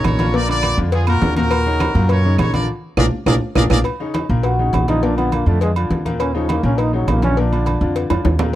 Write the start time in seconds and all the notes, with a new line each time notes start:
Already playing: C#3 C#4 D#4
0.04 A#1 A#4 C#5, cowbell, high conga, low timbale, low agogo, claves
0.19 D3 D4 F4, cowbell, high conga, low agogo
0.34 A#2 A#3 A#4 D5, cowbell, high conga
0.48 D3 D4 F4 A#4 D5, high conga, low agogo
0.63 cowbell, high conga, low agogo, claves
0.77 F2 D3 D4 F4, high conga
0.92 F4 G#4, cowbell, high conga, low agogo
1.07 A#2 A#3 F#4 A#4, high conga, low agogo, claves
1.21 D#2 D3 D4 F4, cowbell, high conga, low timbale
1.36 A#2 A#3 F#4 A#4, high conga, low agogo
1.51 cowbell, high conga, low agogo, claves
1.66 C#3 C#4 D#4, high conga
1.80 cowbell, high conga, low agogo, claves
1.95 F#2 A#2 A#3 A#4, high conga
2.09 A#4 C#5, cowbell, high conga, low agogo
2.25 C#3 C#4 D#4, high conga
2.38 A#1 A#4 C#5, cowbell, high conga, low timbale, low agogo, claves
2.53 D3 D4 F4 A#4 D5, cowbell, high conga, low agogo
2.97 A#1 A#3 D4 F4 G#4 A#4 D5, cowbell, low conga, high timbale, claves
3.26 A#1 A#3 D4 F4 G#4 A#4 D5, cowbell, low conga, high timbale, claves
3.55 A#1 A#3 D4 F4 G#4 A#4 D5, cowbell, low conga, high timbale, claves
3.70 A#1 A#3 D4 F4 G#4 A#4 D5, cowbell, low conga, high timbale, claves
3.84 cowbell, high conga, low agogo
4.00 C#3 C#4 D#4, high conga
4.14 cowbell, high conga, low agogo
4.29 A#1 A#2 A#3 A#4, high conga
4.43 F#4, cowbell, high conga, low agogo
4.59 C#3 C#4 D#4, high conga
4.73 A#1, cowbell, high conga, low timbale, low agogo
4.88 D3 D4 D#4 F4, cowbell, high conga, low agogo
5.03 A#2 A#3 D4 A#4, cowbell, high conga
5.17 D3 B3 D4 F4, high conga, low agogo
5.32 A#3, cowbell, high conga, low agogo
5.46 F2 D3 A3 D4 F4, high conga
5.61 G#3, cowbell, high conga, low agogo
5.76 D3 D4 F4, high conga, low agogo
5.90 D#2, cowbell, high conga
6.05 A#2 A#3 A#4, high conga, low agogo
6.20 C#4, cowbell, high conga, low agogo
6.35 C#3 F3 C#4 D#4, high conga
6.49 A#3, cowbell, high conga, low agogo
6.63 A#1 A#2 A#3 C#4 A#4, high conga
6.78 D#4, cowbell, high conga, low agogo
6.93 C#3 F#3 C#4 D#4, high conga
7.07 A#1 A#3, cowbell, high conga, low timbale, low agogo
7.22 D3 C#4 D4 F4, cowbell, high conga, low agogo
7.37 A#2 A#3 D4 A#4, cowbell, high conga
7.52 D3 D4 F4, high conga, low agogo
7.66 cowbell, high conga, low agogo
7.81 F2 D3 D4 F4, high conga
7.96 cowbell, high conga, low agogo
8.10 F2 D3 D4 F4, high bongo, high conga, high timbale, low agogo
8.25 D#2, cowbell, high bongo, high conga, high timbale
8.39 A#2 A#3 A#4, low bongo, high conga, low timbale, low agogo